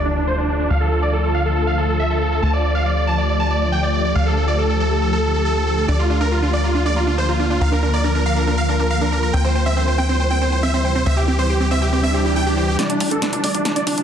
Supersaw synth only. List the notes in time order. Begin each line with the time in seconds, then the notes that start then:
0.05 D4
0.16 D4
0.27 C5
0.38 D4
0.49 D4
0.59 D4
0.70 F5
0.81 A4
0.91 A4
1.02 D5
1.13 A4
1.24 A4
1.35 F5
1.46 A4
1.56 A4
1.67 F5
1.78 A4
1.89 A4
1.99 E5
2.10 A4
2.21 A4
2.32 A4
2.42 A5
2.53 D5
2.64 D5
2.75 F5
2.86 D5
2.96 D5
3.07 A5
3.18 D5
3.29 D5
3.39 A5
3.50 D5
3.61 D5
3.72 G5
3.83 D5
3.94 D5
4.05 D5
4.15 F5
4.26 A4
4.37 A4
4.48 D5
4.58 A4
4.70 A4
4.80 A4
4.91 A4
5.02 A4
5.13 A4
5.24 A4
5.34 A4
5.45 A4
5.56 A4
5.67 A4
5.77 A4
5.88 D5
5.99 F4
6.10 F4
6.21 A#4
6.32 F4
6.42 F4
6.53 D5
6.64 F4
6.75 F4
6.86 D5
6.96 F4
7.07 F4
7.18 C5
7.29 F4
7.39 F4
7.50 F4
7.61 F5
7.72 A#4
7.83 A#4
7.93 D5
8.04 A#4
8.15 A#4
8.26 F5
8.36 A#4
8.47 A#4
8.57 F5
8.69 A#4
8.79 A#4
8.90 F5
9.01 A#4
9.12 A#4
9.22 A#4
9.33 G5
9.44 C5
9.55 C5
9.66 E5
9.77 C5
9.87 C5
9.98 G5
10.09 C5
10.19 C5
10.30 G5
10.41 C5
10.52 C5
10.63 E5
10.74 C5
10.84 C5
10.95 C5
11.06 E5
11.17 G4
11.28 G4
11.39 C5
11.50 G4
11.60 G4
11.71 E5
11.82 G4
11.93 G4
12.03 E5
12.14 G4
12.25 G4
12.36 G5
12.47 G4
12.57 G4
12.68 G4
12.79 D5
12.90 D4
13.01 D4
13.11 A4
13.22 D4
13.33 D4
13.44 D5
13.55 D4
13.65 D4
13.76 D5
13.87 D4
13.98 D4